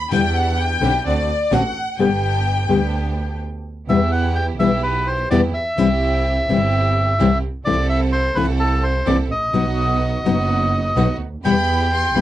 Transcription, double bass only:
Already playing: D2
0.12 E2
0.81 B1
1.05 D2
1.52 A1
1.99 G1
2.70 D2
3.88 E2
4.59 B1
5.31 E2
5.77 C2
6.48 G1
7.19 C2
7.65 C2
8.35 C2
9.06 C2
9.30 A1
9.53 B1
10.25 F#1
10.96 B1
11.20 D2
11.44 E2
12.15 B1

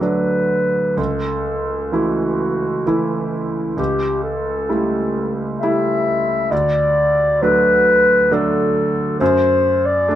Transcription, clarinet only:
0.01 B4
0.98 A4
1.93 F#4
2.88 E4
3.78 G4
4.23 A4
5.60 E5
6.51 D5
7.42 B4
8.33 A4
9.19 C5
9.85 D5

